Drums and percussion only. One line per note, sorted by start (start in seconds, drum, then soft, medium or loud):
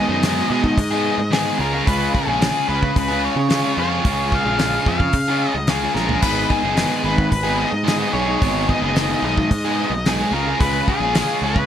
0.23 snare loud
0.23 open hi-hat medium
0.64 kick medium
0.78 kick loud
0.78 open hi-hat medium
1.33 snare loud
1.33 open hi-hat medium
1.87 kick loud
1.87 open hi-hat medium
2.15 kick medium
2.42 snare loud
2.42 open hi-hat medium
2.83 kick medium
2.96 kick loud
2.96 open hi-hat medium
3.50 snare loud
3.50 open hi-hat medium
4.05 kick loud
4.05 open hi-hat medium
4.32 kick medium
4.59 snare loud
4.59 open hi-hat medium
4.86 kick medium
5.00 kick medium
5.13 kick medium
5.13 open hi-hat medium
5.67 snare loud
5.67 open hi-hat medium
5.96 snare medium
6.09 floor tom medium
6.22 kick loud
6.22 open hi-hat medium
6.22 crash loud
6.50 kick medium
6.77 snare loud
6.77 open hi-hat medium
7.18 kick medium
7.32 kick medium
7.32 open hi-hat medium
7.87 snare loud
7.87 open hi-hat medium
8.42 kick loud
8.42 open hi-hat medium
8.69 kick medium
8.96 snare loud
8.96 open hi-hat medium
9.37 kick medium
9.51 kick loud
9.51 open hi-hat medium
10.06 snare loud
10.06 open hi-hat medium
10.61 kick loud
10.61 open hi-hat medium
10.88 kick medium
11.15 snare loud
11.15 open hi-hat medium
11.56 kick medium